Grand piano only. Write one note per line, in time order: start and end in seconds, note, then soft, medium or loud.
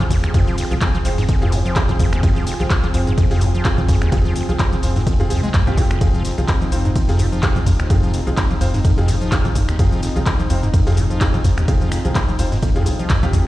0.34 0.68 C4 medium
0.34 0.68 F4 medium
0.34 0.68 G#4 medium
0.71 0.87 C4 medium
0.71 0.87 F4 medium
0.71 0.87 G#4 medium
1.05 1.17 C4 medium
1.05 1.17 F4 medium
1.05 1.17 C5 medium
1.42 1.51 C4 medium
1.42 1.51 F4 medium
1.42 1.51 G#4 loud
1.76 1.93 C4 medium
1.76 1.93 F4 medium
1.76 1.93 G#4 loud
2.23 2.57 C4 medium
2.23 2.57 F4 medium
2.23 2.57 G#4 medium
2.60 2.76 C4 medium
2.60 2.76 F4 medium
2.60 2.76 G#4 medium
2.94 3.06 C4 medium
2.94 3.06 F4 medium
2.94 3.06 C5 medium
3.31 3.40 C4 medium
3.31 3.40 F4 medium
3.31 3.40 G#4 loud
3.65 3.82 C4 medium
3.65 3.82 F4 medium
3.65 3.82 G#4 loud
4.12 4.46 C4 medium
4.12 4.46 F4 medium
4.12 4.46 G#4 medium
4.49 4.65 C4 medium
4.49 4.65 F4 medium
4.49 4.65 G#4 medium
4.83 4.95 C4 medium
4.83 4.95 F4 medium
4.83 4.95 C5 medium
5.20 5.28 C4 loud
5.20 5.28 F4 medium
5.20 5.28 G#4 loud
5.30 5.42 C4 medium
5.30 5.42 F4 medium
5.30 5.42 G#4 medium
5.67 5.76 C4 loud
5.67 5.76 F4 medium
5.67 5.76 G4 loud
5.78 5.99 C4 medium
5.78 5.99 F4 medium
5.78 5.99 G#4 medium
6.01 6.35 C4 medium
6.01 6.35 F4 medium
6.01 6.35 G#4 medium
6.38 6.54 C4 medium
6.38 6.54 F4 medium
6.38 6.54 G#4 medium
6.72 6.84 C4 medium
6.72 6.84 F4 medium
6.72 6.84 C5 medium
7.09 7.18 C4 medium
7.09 7.18 F4 medium
7.09 7.18 G#4 loud
7.43 7.60 C4 medium
7.43 7.60 F4 medium
7.43 7.60 G#4 loud
7.90 8.24 C4 medium
7.90 8.24 F4 medium
7.90 8.24 G#4 medium
8.27 8.43 C4 medium
8.27 8.43 F4 medium
8.27 8.43 G#4 medium
8.61 8.73 C4 medium
8.61 8.73 F4 medium
8.61 8.73 C5 medium
8.98 9.07 C4 medium
8.98 9.07 F4 medium
8.98 9.07 G#4 loud
9.32 9.49 C4 medium
9.32 9.49 F4 medium
9.32 9.49 G#4 loud
9.79 10.13 C4 medium
9.79 10.13 F4 medium
9.79 10.13 G#4 medium
10.16 10.32 C4 medium
10.16 10.32 F4 medium
10.16 10.32 G#4 medium
10.50 10.62 C4 medium
10.50 10.62 F4 medium
10.50 10.62 C5 medium
10.87 10.96 C4 medium
10.87 10.96 F4 medium
10.87 10.96 G#4 loud
11.21 11.38 C4 medium
11.21 11.38 F4 medium
11.21 11.38 G#4 loud
11.68 12.02 C4 medium
11.68 12.02 F4 medium
11.68 12.02 G#4 medium
12.05 12.21 C4 medium
12.05 12.21 F4 medium
12.05 12.21 G#4 medium
12.39 12.51 C4 medium
12.39 12.51 F4 medium
12.39 12.51 C5 medium
12.76 12.84 C4 medium
12.76 12.84 F4 medium
12.76 12.84 G#4 loud
12.86 12.98 C4 medium
12.86 12.98 F4 medium
12.86 12.98 G#4 medium
13.23 13.32 C4 loud
13.23 13.32 F4 loud
13.23 13.32 G4 loud
13.33 13.47 C4 medium
13.33 13.47 F4 medium
13.33 13.47 G#4 medium